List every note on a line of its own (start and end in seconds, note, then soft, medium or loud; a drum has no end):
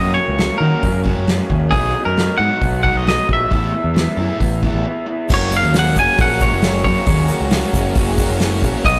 0.00 0.15 F#2 medium
0.00 0.17 F#3 medium
0.00 0.17 A#3 medium
0.00 0.16 C#4 medium
0.00 0.16 F#4 medium
0.00 0.14 D#5 medium
0.14 0.40 C#4 medium
0.14 0.61 C#5 medium
0.14 muted overdriven electric guitar stroke medium
0.19 0.39 A#3 medium
0.28 0.49 C#2 medium
0.38 0.64 F#3 medium
0.38 0.61 A#3 medium
0.38 0.60 C#4 medium
0.38 muted overdriven electric guitar stroke soft
0.38 snare loud
0.38 open hi-hat soft
0.58 0.71 D#3 medium
0.58 0.83 A#3 medium
0.58 0.83 C#4 medium
0.58 0.83 F#4 medium
0.58 1.01 A#4 medium
0.62 0.82 F#3 medium
0.83 1.15 F#2 medium
0.83 1.26 F#3 medium
0.83 1.08 A#3 medium
0.83 1.04 C#4 medium
0.83 muted overdriven electric guitar stroke soft
0.83 kick medium
0.83 open hi-hat medium
1.04 1.25 F#3 medium
1.04 1.25 A#3 medium
1.04 1.25 C#4 medium
1.04 1.26 F#4 medium
1.04 kick medium
1.09 1.28 A#3 medium
1.18 1.39 F#2 medium
1.26 1.71 F#3 medium
1.26 1.54 A#3 medium
1.26 muted overdriven electric guitar stroke soft
1.26 snare loud
1.26 open hi-hat medium
1.31 1.50 C#4 medium
1.50 1.71 D#2 medium
1.50 1.72 C#4 medium
1.50 muted overdriven electric guitar stroke soft
1.50 kick medium
1.55 1.74 A#3 medium
1.71 1.94 B1 medium
1.71 1.94 F#3 medium
1.71 1.94 B3 medium
1.71 1.94 D#4 medium
1.71 1.93 F#4 medium
1.71 2.05 G#4 medium
1.71 kick loud
1.71 open hi-hat soft
1.76 1.96 D#4 loud
1.94 2.21 D#4 medium
1.94 muted overdriven electric guitar stroke medium
2.01 2.20 B3 medium
2.05 2.27 F#2 medium
2.05 2.37 A#4 medium
2.17 2.41 F#3 medium
2.17 2.40 B3 medium
2.17 muted overdriven electric guitar stroke soft
2.17 snare loud
2.17 open hi-hat soft
2.22 2.37 D#4 medium
2.38 2.50 G#2 medium
2.38 2.59 F#3 medium
2.38 2.59 B3 medium
2.38 2.60 D#4 medium
2.38 2.60 F#4 medium
2.38 2.82 F#5 loud
2.60 2.93 B1 medium
2.60 3.05 F#3 medium
2.60 2.87 B3 medium
2.60 2.83 D#4 medium
2.60 muted overdriven electric guitar stroke soft
2.60 kick medium
2.60 open hi-hat soft
2.83 3.04 F#3 medium
2.83 3.05 B3 medium
2.83 3.05 D#4 medium
2.83 3.05 F#4 medium
2.83 2.97 F#5 medium
2.83 kick medium
2.95 3.16 B1 medium
2.95 3.07 D#5 medium
3.05 3.50 F#3 medium
3.05 3.31 B3 medium
3.05 3.28 D#5 medium
3.05 muted overdriven electric guitar stroke soft
3.05 snare loud
3.05 open hi-hat medium
3.10 3.28 D#4 medium
3.26 3.50 A#1 medium
3.26 3.50 D#4 medium
3.26 muted overdriven electric guitar stroke medium
3.26 kick medium
3.32 3.51 B3 medium
3.32 4.83 E5 medium
3.50 3.72 A1 medium
3.50 3.94 E3 medium
3.50 3.73 A3 medium
3.50 3.72 B3 medium
3.50 3.71 E4 loud
3.50 3.71 A4 medium
3.50 kick loud
3.50 open hi-hat soft
3.72 3.95 B3 medium
3.72 3.98 E4 medium
3.72 muted overdriven electric guitar stroke medium
3.84 4.06 E2 medium
3.94 4.21 E3 medium
3.94 4.19 B3 medium
3.94 muted overdriven electric guitar stroke soft
3.94 snare loud
3.94 open hi-hat medium
3.99 4.17 E4 medium
4.17 4.28 F#2 medium
4.17 4.39 A3 medium
4.17 4.39 B3 medium
4.17 4.39 E4 medium
4.17 4.39 A4 medium
4.22 4.38 E3 medium
4.39 4.72 A1 medium
4.39 4.84 E3 medium
4.39 4.64 B3 medium
4.39 4.62 E4 medium
4.39 muted overdriven electric guitar stroke soft
4.39 kick medium
4.39 open hi-hat medium
4.63 4.84 A3 medium
4.63 4.83 B3 medium
4.63 4.84 E4 medium
4.63 4.84 A4 medium
4.63 kick medium
4.74 4.84 A1 medium
4.84 5.28 E3 medium
4.84 5.09 B3 loud
4.84 5.06 E4 medium
4.84 muted overdriven electric guitar stroke soft
5.06 5.28 E4 medium
5.06 muted overdriven electric guitar stroke soft
5.11 5.30 B3 medium
5.28 5.61 F#1 loud
5.28 5.50 F#3 medium
5.28 5.50 A#3 loud
5.28 5.51 C#4 loud
5.28 5.51 F#4 loud
5.28 8.81 G#4 medium
5.28 7.06 F#5 medium
5.28 8.81 A#5 medium
5.28 kick loud
5.28 crash loud
5.28 shaker medium
5.34 5.55 C#5 medium
5.50 5.72 F#3 medium
5.50 5.72 A#3 medium
5.50 5.73 C#4 medium
5.50 5.73 F#4 medium
5.50 open hi-hat medium
5.50 shaker loud
5.57 5.77 F5 medium
5.63 5.95 D#2 medium
5.63 shaker soft
5.72 5.93 F#3 medium
5.72 5.93 A#3 medium
5.72 5.94 C#4 loud
5.72 5.95 F#4 loud
5.72 snare loud
5.72 open hi-hat medium
5.72 shaker medium
5.76 5.96 F#3 medium
5.76 5.97 A#3 loud
5.76 5.97 C#4 loud
5.76 5.97 F#5 loud
5.93 6.07 F#1 loud
5.93 6.15 F#3 medium
5.93 6.15 A#3 medium
5.93 6.16 C#4 medium
5.93 6.18 F#4 medium
5.93 kick medium
5.93 open hi-hat medium
5.93 shaker loud
5.99 6.21 G#5 medium
6.16 6.50 A#1 loud
6.16 6.39 F#3 medium
6.16 6.39 A#3 loud
6.16 6.39 C#4 loud
6.16 6.40 F#4 loud
6.16 kick loud
6.16 open hi-hat medium
6.16 shaker medium
6.21 6.43 F#5 loud
6.39 6.62 F#3 medium
6.39 6.62 A#3 medium
6.39 6.62 C#4 medium
6.39 6.64 F#4 medium
6.39 6.83 C#5 medium
6.39 kick medium
6.39 open hi-hat medium
6.39 shaker loud
6.51 6.83 F#1 medium
6.62 6.83 F#3 medium
6.62 6.83 A#3 medium
6.62 6.83 C#4 medium
6.62 6.85 F#4 loud
6.62 snare loud
6.62 open hi-hat medium
6.62 shaker medium
6.84 6.96 F#2 loud
6.84 7.04 F#3 medium
6.84 7.05 A#3 medium
6.84 7.05 C#4 medium
6.84 7.07 F#4 medium
6.84 7.26 C#5 medium
6.84 kick medium
6.84 open hi-hat medium
7.05 7.29 D#2 loud
7.05 7.29 F#3 loud
7.05 7.29 A#3 medium
7.05 7.29 C#4 loud
7.05 7.30 F#4 loud
7.05 8.84 G#5 medium
7.05 kick loud
7.05 open hi-hat medium
7.05 shaker medium
7.28 7.50 F#3 medium
7.28 7.50 A#3 medium
7.28 7.51 C#4 medium
7.28 7.52 F#4 medium
7.28 open hi-hat medium
7.28 shaker loud
7.40 7.62 C#2 medium
7.40 shaker soft
7.51 7.75 F#3 loud
7.51 7.74 A#3 loud
7.51 7.74 C#4 loud
7.51 7.76 F#4 loud
7.51 snare loud
7.51 open hi-hat medium
7.51 shaker medium
7.73 7.95 F#1 loud
7.73 7.95 F#3 medium
7.73 7.96 A#3 medium
7.73 7.96 C#4 medium
7.73 7.97 F#4 medium
7.73 kick medium
7.73 open hi-hat medium
7.73 shaker loud
7.95 8.28 F#1 medium
7.95 8.17 F#3 loud
7.95 8.18 A#3 loud
7.95 8.19 C#4 loud
7.95 8.19 F#4 loud
7.95 kick loud
7.95 open hi-hat medium
7.95 shaker medium
8.18 8.38 F#3 medium
8.18 8.39 A#3 medium
8.18 8.40 C#4 medium
8.18 8.40 F#4 medium
8.18 kick medium
8.18 open hi-hat medium
8.18 shaker medium
8.30 8.61 F#1 medium
8.39 8.61 F#3 loud
8.39 8.62 A#3 loud
8.39 8.62 C#4 loud
8.39 8.62 F#4 loud
8.39 snare loud
8.39 open hi-hat medium
8.39 shaker medium
8.62 8.73 A#1 medium
8.62 8.84 F#3 medium
8.62 8.84 A#3 medium
8.62 8.84 C#4 medium
8.62 8.84 F#4 loud
8.62 kick medium
8.62 open hi-hat medium
8.62 shaker medium
8.83 8.99 B1 loud
8.83 8.99 B2 loud
8.83 8.99 F#3 medium
8.83 8.99 B3 loud
8.83 8.99 D#4 loud
8.83 8.99 F#4 medium
8.83 8.99 F#4 loud
8.83 8.99 D#5 medium
8.83 8.99 D#5 loud
8.83 8.99 B5 medium
8.83 kick loud
8.83 open hi-hat medium
8.83 shaker medium